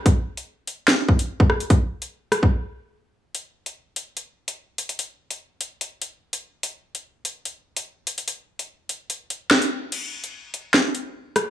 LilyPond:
\new DrumStaff \with { instrumentName = "Drums" } \drummode { \time 4/4 \tempo 4 = 146 <hh bd>8. hh16 r8 hh8 <hh sn>8 bd16 hh16 r16 bd16 ss16 hh16 | <hh bd>8. hh16 r8 <hh ss>16 bd16 r4 r4 | hh8. hh16 r8 hh8 hh8. hh16 r8 hh16 hh16 | hh8. hh16 r8 hh8 hh8 hh8 r16 hh8. |
hh8. hh16 r8 hh8 hh8. hh16 r8 hh16 hh16 | hh8. hh16 r8 hh8 hh8 hh8 sn16 hh8. | <cymc hh>8. hh16 r8 hh8 <hh sn>8 hh8 r8 <hh ss>8 | }